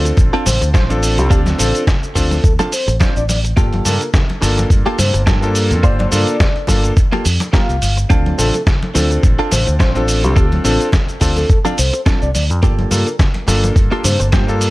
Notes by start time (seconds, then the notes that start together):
Already playing: D2 C4 D4 F4 A4
0.05 muted clean electric guitar stroke, closed hi-hat, cabasa
0.17 A1, kick, closed hi-hat, muted conga, cabasa
0.33 C4 D4 F4 A4, closed hi-hat
0.46 A1 C5, open hi-hat, muted conga, low conga, cabasa
0.61 D2, muted clean electric guitar stroke, closed hi-hat, cabasa
0.74 A1 C4 D4 F4 C5, kick, snare, closed hi-hat, high conga, cabasa
0.89 C4 D4 F4 A4 C5, closed hi-hat, muted conga, cabasa
1.03 open hi-hat, cabasa
1.18 C2 G4, muted clean electric guitar stroke, closed hi-hat, muted conga, cabasa
1.30 D2 C4 D4 F4 A4, kick, closed hi-hat, cabasa
1.46 snare, closed hi-hat, high conga, cabasa
1.58 A1 C4 D4 F4 A4, open hi-hat, muted conga, low conga, cabasa
1.75 closed hi-hat, cabasa
1.87 kick, snare, closed hi-hat, muted conga, low conga, cabasa
2.03 closed hi-hat, cabasa
2.15 D2 C4 D4 F4 A4, muted clean electric guitar stroke, kick, open hi-hat, cabasa
2.31 A4, muted clean electric guitar stroke, open hi-hat, muted conga, cabasa
2.44 D2, kick, closed hi-hat, cabasa
2.59 C4 D4 F4 A4, closed hi-hat, muted conga, cabasa
2.72 C5, open hi-hat, cabasa
2.88 A1, muted clean electric guitar stroke, closed hi-hat, cabasa
3.00 C4 D4 F4 C5, kick, snare, closed hi-hat, muted conga, high conga, cabasa
3.16 A1 D5, closed hi-hat, cabasa
3.29 D5, open hi-hat, muted conga, cabasa
3.44 muted clean electric guitar stroke, closed hi-hat, cabasa
3.57 G1 A#3 F4 G4 A4, kick, closed hi-hat, muted conga, cabasa
3.73 closed hi-hat, high conga
3.85 G2 A#3 D4 F4 A4 A#4, open hi-hat, muted conga, low conga, cabasa
4.01 A#4, closed hi-hat, cabasa
4.14 kick, snare, closed hi-hat, low conga, cabasa
4.29 closed hi-hat, muted conga
4.41 G1 A#3 D4 F4 A4, muted clean electric guitar stroke, snare, open hi-hat, cabasa
4.57 muted clean electric guitar stroke, closed hi-hat, muted conga, cabasa
4.70 G2, kick, closed hi-hat, cabasa
4.86 A#3 F4 G4 A4, closed hi-hat
4.98 G2 C5, open hi-hat, muted conga, low conga, cabasa
5.14 G1, muted clean electric guitar stroke, closed hi-hat, cabasa
5.26 G2 A#3 F4 G4 A4, kick, snare, closed hi-hat, muted conga, high conga, cabasa
5.41 A#3 D4 F4 A4, closed hi-hat, cabasa
5.55 open hi-hat, cabasa
5.71 F2, muted clean electric guitar stroke, closed hi-hat, muted conga, cabasa
5.83 G1 A#3 F4 G4 C5 D5, kick, closed hi-hat, cabasa
5.99 D5, closed hi-hat, muted conga, high conga
6.11 G2 A#3 D4 F4 A4 D5, open hi-hat, low conga, cabasa
6.27 closed hi-hat, cabasa
6.40 kick, snare, closed hi-hat, muted conga, low conga, cabasa
6.56 closed hi-hat
6.67 G1 A#3 D4 F4 A4, muted clean electric guitar stroke, kick, open hi-hat, muted conga, high conga, cabasa
6.84 muted clean electric guitar stroke, closed hi-hat, cabasa
6.97 kick, closed hi-hat, cabasa
7.12 A#3 F4 G4 A4, closed hi-hat, muted conga
7.25 F2, open hi-hat, cabasa
7.40 muted clean electric guitar stroke, closed hi-hat, muted conga, cabasa
7.53 A#3 F4 G4 A#4 F5, kick, snare, closed hi-hat, high conga, cabasa
7.69 C2, closed hi-hat, cabasa
7.82 G1, open hi-hat, muted conga, cabasa
7.97 muted clean electric guitar stroke, closed hi-hat, cabasa
8.10 D2 C4 D4 F4 A4, kick, closed hi-hat, muted conga, cabasa
8.26 closed hi-hat, high conga
8.38 A1 C4 D4 F4 A4, open hi-hat, low conga, cabasa
8.54 A4, closed hi-hat, muted conga, cabasa
8.67 kick, snare, closed hi-hat, low conga, cabasa
8.82 closed hi-hat, muted conga
8.94 D2 C4 D4 F4 A4, muted clean electric guitar stroke, snare, open hi-hat, high conga, cabasa
9.11 muted clean electric guitar stroke, closed hi-hat, cabasa
9.23 A1, kick, closed hi-hat, muted conga, cabasa
9.39 C4 D4 F4 A4, closed hi-hat
9.51 A1 C5, open hi-hat, muted conga, low conga, cabasa
9.67 D2, muted clean electric guitar stroke, closed hi-hat, cabasa
9.79 A1 C4 D4 F4 C5, kick, snare, closed hi-hat, high conga, cabasa
9.95 C4 D4 F4 A4 C5, closed hi-hat, muted conga, cabasa
10.08 open hi-hat, cabasa
10.23 C2 G4, muted clean electric guitar stroke, closed hi-hat, muted conga, cabasa
10.36 C4 D4 F4 A4, kick, closed hi-hat, cabasa
10.52 closed hi-hat, high conga
10.64 A1 C4 D4 F4 A4, open hi-hat, muted conga, low conga, cabasa
10.81 closed hi-hat, cabasa
10.92 kick, snare, closed hi-hat, muted conga, low conga, cabasa
11.09 closed hi-hat, cabasa
11.21 D2 C4 D4 F4 A4, muted clean electric guitar stroke, kick, open hi-hat, cabasa
11.36 A4, muted clean electric guitar stroke, open hi-hat, muted conga, cabasa
11.50 kick, cabasa
11.65 C4 D4 F4 A4, closed hi-hat, muted conga, cabasa
11.78 C2 C5, open hi-hat, cabasa
11.93 muted clean electric guitar stroke, closed hi-hat, cabasa
12.06 C4 D4 F4 A4, kick, snare, closed hi-hat, muted conga, high conga, cabasa
12.22 C2 D5, closed hi-hat, cabasa
12.34 D2 D5, open hi-hat, muted conga, cabasa
12.50 F2, muted clean electric guitar stroke, closed hi-hat, cabasa
12.62 G1 A#3 F4 G4 A4, kick, closed hi-hat, muted conga, cabasa
12.79 closed hi-hat, high conga
12.91 G2 A#3 D4 F4 A4 A#4, open hi-hat, muted conga, low conga, cabasa
13.07 A#4, closed hi-hat, cabasa
13.19 kick, snare, closed hi-hat, low conga, cabasa
13.34 closed hi-hat, muted conga
13.47 G1 A#3 D4 F4 A4, muted clean electric guitar stroke, snare, open hi-hat, high conga, cabasa
13.63 muted clean electric guitar stroke, closed hi-hat, muted conga, cabasa
13.76 G2, kick, closed hi-hat, cabasa
13.92 A#3 F4 G4 A4, closed hi-hat
14.04 G2 C5, open hi-hat, muted conga, low conga, cabasa
14.20 G1, muted clean electric guitar stroke, closed hi-hat, cabasa
14.32 G2 A#3 F4 G4 C5, kick, snare, closed hi-hat, muted conga, high conga, cabasa
14.47 A#3 D4 F4 A4, closed hi-hat, cabasa
14.61 open hi-hat, cabasa